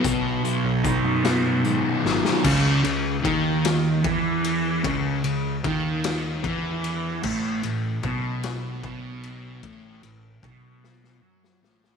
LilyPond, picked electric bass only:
\new Staff \with { instrumentName = "Picked electric bass" } { \clef bass \time 6/8 \key cis \minor \tempo 4. = 50 b,,8 r16 b,,8 fis,8. gis,16 r16 gis,,16 r16 | cis,8 cis,8 dis,4 e,4 | cis,8 cis,8 dis,4 e,4 | a,,8 a,,8 b,,4 b,,4 |
a,,8 a,,8 b,,4 fis,8 a,,8 | }